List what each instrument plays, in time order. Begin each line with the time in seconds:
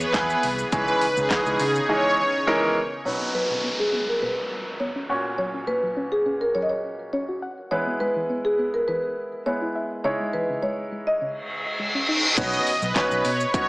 Already playing: analog synth pad E3 B3 G#4 B4
0.00 supersaw synth B4, shaker
0.14 fingered electric bass E2, grand piano B3 E4 G#4, kick, snare, clap, closed hi-hat, shaker
0.30 shaker
0.43 fingered electric bass C2, open hi-hat, shaker
0.59 shaker
0.72 fingered electric bass C#2, analog synth pad C#3 C#4 D#4, grand piano E3 G#3 C#4 D#4 G#4, supersaw synth B4, kick, closed hi-hat, shaker
0.88 shaker
1.01 open hi-hat, shaker
1.17 fingered electric bass C#2, supersaw synth G#4, shaker
1.30 grand piano E3 G#3 C#4 D#4 B4, kick, snare, clap, closed hi-hat, shaker
1.46 fingered electric bass C#2, shaker
1.60 fingered electric bass C#3, supersaw synth G#4, open hi-hat, shaker
1.75 shaker
1.89 grand piano E3 G#3 C#4 D#4 G#4, supersaw synth C#5
2.18 supersaw synth C#5
2.47 grand piano E3 G#3 C#4 D#4 A#4
3.05 synth pluck B2, grand piano F#3 C#4 D#4 B4, marimba C#5, downlifter
3.21 synth pluck B3
3.35 synth pluck F#3, marimba B4
3.50 synth pluck B2
3.64 synth pluck B3
3.79 marimba G#4
3.93 synth pluck B3
4.08 marimba A#4
4.22 synth pluck B2, marimba B4
4.80 synth pluck B3, marimba C#5
4.96 synth pluck C#4
5.09 grand piano A#2 C#4 F#4 C#5, synth pluck F#5
5.38 synth pluck F#3, marimba C#5
5.54 synth pluck C#4
5.67 synth pluck A#3, marimba B4
5.83 synth pluck F#3
5.97 synth pluck C#4
6.12 marimba G#4
6.26 synth pluck C#4
6.41 marimba A#4
6.55 synth pluck F#3, marimba C#5
6.62 marimba D#5
6.69 marimba C#5
7.13 synth pluck C#4, marimba C#5
7.29 synth pluck F#4
7.42 synth pluck F#5
7.71 synth pluck E3, grand piano G#3 B3 E4 B4, marimba C#5
7.87 synth pluck B3
8.00 synth pluck G#3, marimba B4
8.16 synth pluck E3
8.30 synth pluck B3
8.45 marimba G#4
8.59 synth pluck B3
8.74 marimba A#4
8.88 synth pluck E3, marimba B4
9.46 grand piano G#3 B3 E4 B4, synth pluck B3, marimba C#5
9.62 synth pluck E4
9.75 synth pluck E5
10.04 synth pluck C#3, grand piano G#3 D#4 E4 C#5, marimba C#5
10.20 synth pluck G#3
10.33 synth pluck E3, marimba B4
10.49 synth pluck C#3
10.63 synth pluck G#3, marimba C#5
10.92 synth pluck G#3
11.07 marimba D#5
11.21 synth pluck C#3, reverse cymbal
11.79 synth pluck G#3
11.95 synth pluck C#4
12.09 synth pluck D#4
12.37 fingered electric bass B1, grand piano B3 C#4 D#4 F#4 C#5, supersaw synth D#5, kick, closed hi-hat, crash, impact, shaker
12.53 shaker
12.67 open hi-hat, shaker
12.82 fingered electric bass B1, supersaw synth B4, shaker
12.96 grand piano B3 C#4 D#4 F#4 C#5, kick, snare, clap, closed hi-hat, shaker
13.11 fingered electric bass B1, shaker
13.25 fingered electric bass B2, supersaw synth C#5, open hi-hat, shaker
13.40 shaker
13.54 grand piano B3 C#4 D#4 F#4 C#5, supersaw synth C#5, kick, closed hi-hat, shaker